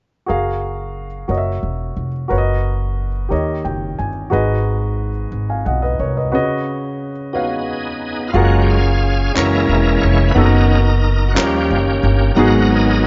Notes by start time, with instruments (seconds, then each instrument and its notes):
0.26 upright bass F#1, grand piano F#4 G#4 A#4 F5
1.28 upright bass F#1, grand piano F#4 A#4 C#5 D#5
1.38 grand piano E5
1.63 upright bass E1
1.96 upright bass F1
2.28 upright bass F#1, grand piano F#4 A#4 B4 C#5
2.38 grand piano D#5
3.29 upright bass D#2, grand piano D#3 G4 A#4 C#5 D#5
3.65 upright bass F#1, grand piano G5
3.99 upright bass G1, grand piano G#5
4.30 upright bass G#1, grand piano G#2 F#4 G#4 B4 D#5
5.32 upright bass G#1
5.50 grand piano F5 G#5
5.66 upright bass B1, grand piano D#5 F#5
5.82 grand piano B4 D#5
5.99 upright bass C2, grand piano A#4 C#5
6.17 grand piano B4 D#5
6.32 grand piano C#3 F#4 B4 C#5 D#5
7.33 tonewheel organ B3 D#4 G#4, grand piano F#4 B4 C#5 F5
8.28 tonewheel organ F4
8.33 upright bass F#1, tonewheel organ F#3 G#3 A#3 C#4 F#4, grand piano F4 F#4 G#4 A#4
8.61 tonewheel organ G4
8.70 tonewheel organ C#4 G#4 F5
9.35 upright bass F#1, tonewheel organ E3 G#3 A#3 C#4 E4 A#4, grand piano C#4 E4 F#4 A#4, clap
9.69 upright bass E1
10.01 upright bass F1, tonewheel organ C#5
10.28 tonewheel organ B4
10.35 upright bass F#1, tonewheel organ D#3 B3 C#4 D#4 A#4, grand piano B3 D#4 F#4 A4
10.44 grand piano A#4
11.28 tonewheel organ F#4
11.34 upright bass D#2, grand piano D#3 C#4 D#4 F4 A#4, tonewheel organ F3 G3 A#3 C#4 G4, clap
11.44 grand piano G4
11.71 upright bass F#1
12.03 upright bass G1
12.35 upright bass G#1, grand piano G#2 B3 D#4 F#4, tonewheel organ F#3 B3 D#4 F#4 A#4
12.39 grand piano G#4
12.69 tonewheel organ B3 D#4 G#4